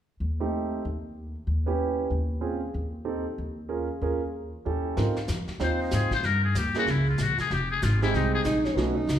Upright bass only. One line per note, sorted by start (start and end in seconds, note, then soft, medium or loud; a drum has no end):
0.20 0.70 D#2 medium
0.85 1.34 D#2 medium
1.47 1.97 D#2 medium
2.10 2.61 D#2 medium
2.74 3.24 D#2 medium
3.38 3.88 D#2 medium
4.01 4.51 D#2 medium
4.66 4.95 D#2 medium
4.97 5.28 G#2 medium
5.29 5.47 F2 medium
5.48 muted upright bass stroke soft
5.60 5.91 D#2 medium
5.93 6.23 G#2 medium
6.23 6.54 G2 medium
6.55 6.86 D#2 medium
6.87 7.18 C#2 medium
7.19 7.37 A#1 medium
7.39 muted upright bass stroke soft
7.50 7.81 F1 medium
7.83 8.13 G#1 medium
8.14 8.44 C2 medium
8.45 8.75 A#1 medium
8.76 9.07 B1 medium
9.07 9.19 C#2 medium